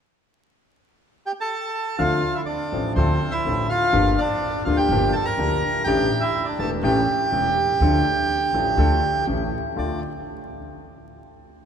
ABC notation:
X:1
M:4/4
L:1/16
Q:1/4=124
K:Dm
V:1 name="Bandoneon"
z8 z2 [Gg] [Aa]4- [Aa] | [Ff]3 [Ee] [Dd]4 [Cc]3 [Ee]3 [Ff]2- | [Ff]2 [Dd]4 [Ff] [Gg]3 [Aa] [Bb]4- [Bb] | [Gg]3 [Ee]2 [Dd] [Aa]2 [Gg]8- |
[Gg]12 z4 | d2 z12 z2 |]
V:2 name="Grand piano"
z16 | [D,,D,F,CDA]2 z4 [A,,,A,,F,CDA]2 [D,,D,F,CDA]2 z2 [A,,,A,,F,CDA]2 z2 | [G,,,G,,F,B,DG]2 z4 [D,,D,F,B,DG]2 [G,,,G,,F,B,DG]2 z2 [D,,D,F,B,DG]2 z2 | [A,,,A,,E,A,DG]2 z4 [E,,,E,,E,A,DG]2 [A,,,A,,E,A,^CG]2 z2 [E,,,E,,E,A,CG]2 z2 |
[D,,D,F,A,DA]2 z4 [A,,,A,,F,A,DA]2 [D,,D,F,A,DA]2 z2 [A,,,A,,E,A,^CG]2 z2 | [D,,A,DF]2 z12 z2 |]
V:3 name="Upright bass" clef=bass
z16 | D,,2 z4 A,,,2 D,,2 z2 A,,,2 z2 | G,,,2 z4 D,,2 G,,,2 z2 D,,2 z2 | A,,,2 z4 E,,,2 A,,,2 z2 E,,,2 z2 |
D,,2 z4 A,,,2 D,,2 z2 A,,,2 z2 | D,,2 z12 z2 |]